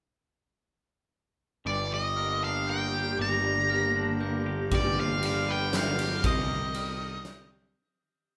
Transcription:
1.65 3.16 G1 soft
1.65 3.19 G2 soft
1.65 4.69 D3 medium
1.65 4.69 A#3 medium
1.65 7.73 G4 medium
1.65 1.93 D5 soft
1.65 2.17 D6 soft
1.91 3.44 G3 soft
1.91 2.44 D#5 medium
2.16 2.67 A#3 soft
2.16 2.68 F6 soft
2.43 3.95 D4 soft
2.43 2.70 F5 medium
2.67 3.68 A#3 soft
2.67 3.16 G5 medium
2.67 3.19 G6 soft
2.93 4.46 G4 medium
3.19 4.69 G1 medium
3.19 4.47 G2 soft
3.19 4.44 A#5 medium
3.19 3.70 D6 medium
3.44 4.97 G3 soft
3.69 4.19 A#3 soft
3.69 4.21 F6 medium
3.95 4.72 D4 soft
4.20 4.72 A#3 medium
4.20 4.72 G6 medium
4.46 5.01 G4 medium
4.71 6.22 G1 medium
4.71 5.99 G2 medium
4.71 6.23 F3 medium
4.71 6.23 B3 medium
4.71 5.00 D5 medium
4.71 5.23 D6 medium
4.71 kick medium
4.71 ride soft
4.98 6.25 F3 soft
4.98 5.25 F5 medium
5.22 5.73 G3 medium
5.22 5.51 F5 medium
5.22 5.74 F6 medium
5.22 ride soft
5.48 6.25 B3 medium
5.48 5.76 G5 medium
5.73 6.75 G3 medium
5.73 6.26 F5 medium
5.73 6.25 G6 medium
5.73 snare medium
5.73 ride soft
5.99 7.51 G4 medium
5.99 ride soft
6.23 7.74 C2 medium
6.23 7.52 C3 medium
6.23 7.75 D#3 medium
6.23 7.75 C4 medium
6.23 7.49 D#5 medium
6.23 6.76 D#6 medium
6.23 kick medium
6.23 ride soft
6.50 7.77 D#3 medium
6.74 7.25 G3 medium
6.74 7.26 F6 medium
6.74 ride soft
7.01 7.77 D#4 medium
7.25 7.77 G3 medium
7.25 7.77 G6 medium
7.25 snare medium
7.25 ride soft
7.51 7.77 G4 medium

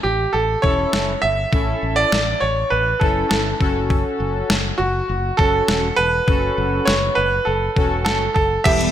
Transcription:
0.03 0.25 A1 loud
0.03 0.34 G4 medium
0.33 0.55 A1 medium
0.33 0.64 A4 medium
0.62 0.84 E1 medium
0.62 1.12 C#4 medium
0.62 1.12 E4 medium
0.62 1.12 A4 medium
0.62 1.18 C#5 loud
0.62 kick medium
0.93 1.14 F#1 medium
0.93 snare loud
1.22 1.44 G1 medium
1.22 1.99 E5 loud
1.53 1.73 A1 loud
1.53 2.18 C#4 medium
1.53 2.18 E4 medium
1.53 2.18 A4 medium
1.53 kick loud
1.82 2.03 A1 medium
1.96 2.42 D5 loud
2.12 2.33 A1 medium
2.12 snare loud
2.40 2.63 A1 medium
2.40 2.69 C#5 loud
2.70 2.92 A1 medium
2.70 3.02 B4 medium
3.00 3.22 F#1 medium
3.00 3.50 C#4 medium
3.00 3.50 E4 medium
3.00 3.28 A4 medium
3.00 3.50 A4 medium
3.00 kick medium
3.29 3.52 G1 medium
3.29 3.71 A4 medium
3.29 snare loud
3.60 4.02 F#1 loud
3.60 4.56 C#4 medium
3.60 4.56 F#4 medium
3.60 4.56 A4 medium
3.60 kick medium
3.90 kick loud
4.20 4.41 F#1 medium
4.50 4.70 F#1 medium
4.50 snare loud
4.78 5.00 F#1 medium
4.78 5.40 F#4 loud
5.09 5.30 F#1 loud
5.37 5.60 F#1 medium
5.37 5.88 C#4 medium
5.37 5.88 F#4 medium
5.37 5.99 A4 loud
5.37 5.88 A4 medium
5.37 kick medium
5.68 5.89 E1 loud
5.68 snare loud
5.96 6.19 E1 medium
5.96 6.89 B4 loud
6.28 6.49 F#1 loud
6.28 6.93 C#4 medium
6.28 6.93 F#4 medium
6.28 6.93 A4 medium
6.28 kick loud
6.58 6.78 F#1 loud
6.85 7.08 F#1 medium
6.85 7.17 C#5 loud
6.85 snare loud
7.15 7.38 F#1 medium
7.15 7.47 B4 loud
7.45 7.68 F#1 loud
7.45 8.03 A4 medium
7.76 8.06 E1 medium
7.76 8.25 C#4 medium
7.76 8.25 F#4 medium
7.76 8.25 A4 medium
7.76 kick medium
8.05 8.27 F#1 medium
8.05 8.33 A4 medium
8.05 snare loud
8.34 8.57 F#1 medium
8.34 8.66 A4 medium
8.34 kick medium
8.64 8.86 E1 loud
8.64 8.91 E3 medium
8.64 8.91 G3 medium
8.64 8.91 B3 medium
8.64 8.80 B3 medium
8.64 8.80 E4 medium
8.64 8.80 G4 medium
8.64 8.87 G4 medium
8.64 8.91 E5 loud
8.64 kick loud
8.64 closed hi-hat medium
8.64 crash medium
8.81 closed hi-hat medium

